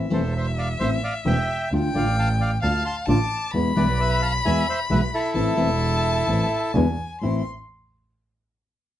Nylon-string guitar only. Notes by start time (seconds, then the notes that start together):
0.10 E3 A3 C4 E4
0.80 E3 A3 C4 E4
1.25 E3 A3 C4 E4
1.72 D3 A3 D4 F4
1.94 D3 A3 D4 F4
2.62 D3 A3 D4 F4
3.07 D3 A3 D4 F4
3.54 B2 E3 G#3 B3 E4
3.76 B2 E3 G#3 B3 E4
4.45 B2 E3 G#3 B3 E4
4.90 B2 E3 G#3 B3 E4
5.34 E3 A3 C4 E4
5.57 E3 A3 C4 E4
6.27 E3 A3 C4 E4
6.74 B2 D3 G#3 B3 E4
7.21 A2 E3 A3 C4 E4